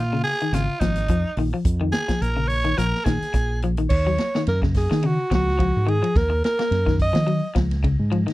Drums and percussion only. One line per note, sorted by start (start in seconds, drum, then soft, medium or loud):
0.25 snare soft
0.25 open hi-hat medium
0.40 closed hi-hat medium
0.53 snare soft
0.53 closed hi-hat medium
0.81 kick medium
0.81 snare medium
0.81 closed hi-hat medium
0.95 snare soft
0.95 closed hi-hat medium
1.08 kick medium
1.08 closed hi-hat medium
1.37 open hi-hat medium
1.65 kick loud
1.65 closed hi-hat medium
1.93 snare medium
1.93 closed hi-hat medium
2.09 kick medium
2.09 snare medium
2.09 closed hi-hat soft
2.22 snare soft
2.22 closed hi-hat medium
2.50 open hi-hat medium
2.64 closed hi-hat medium
2.78 snare soft
2.78 closed hi-hat medium
2.95 snare soft
3.06 kick medium
3.06 snare medium
3.06 closed hi-hat soft
3.22 snare soft
3.22 closed hi-hat medium
3.33 kick medium
3.33 closed hi-hat medium
3.62 closed hi-hat medium
3.77 closed hi-hat soft
3.90 kick loud
3.90 crash loud
4.18 snare medium
4.18 ride bell medium
4.35 snare medium
4.47 snare soft
4.47 ride bell medium
4.62 kick medium
4.62 snare soft
4.74 kick medium
4.74 snare soft
4.74 open hi-hat medium
4.91 snare medium
5.03 ride bell medium
5.31 kick medium
5.31 snare medium
5.31 ride bell medium
5.48 snare soft
5.59 kick medium
5.59 ride bell medium
5.88 ride bell medium
6.04 ride bell medium
6.16 kick loud
6.16 snare soft
6.16 ride bell medium
6.44 snare medium
6.44 ride bell medium
6.59 snare medium
6.59 ride bell medium
6.72 snare soft
6.72 ride bell medium
6.87 kick medium
6.87 snare soft
6.99 kick medium
6.99 open hi-hat medium
7.15 snare medium
7.15 ride bell medium
7.27 ride bell medium
7.56 kick medium
7.56 snare medium
7.56 ride bell medium
7.71 snare soft
7.71 ride bell medium
7.83 kick medium
7.83 ride bell medium
8.12 ride bell soft
8.28 snare soft
8.28 ride bell medium